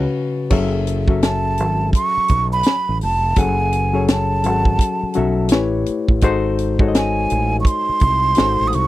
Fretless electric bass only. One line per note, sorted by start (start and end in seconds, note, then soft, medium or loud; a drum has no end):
0.52 1.60 F#1 loud
1.60 1.91 G#1 medium
2.17 muted fretless electric bass stroke soft
2.31 2.62 B1 medium
2.89 3.00 A1 medium
3.03 3.34 F1 medium
3.38 4.46 F#1 medium
4.46 4.76 G#1 medium
5.03 muted fretless electric bass stroke soft
5.17 5.53 B1 medium
5.53 5.83 A1 loud
5.89 muted fretless electric bass stroke soft
6.10 6.24 A1 medium
6.24 7.26 G#1 medium
7.32 7.62 A1 medium
7.89 muted fretless electric bass stroke soft
8.03 8.33 C2 medium
8.39 8.57 G#1 medium
8.60 8.72 A1 medium
8.75 8.87 C2 medium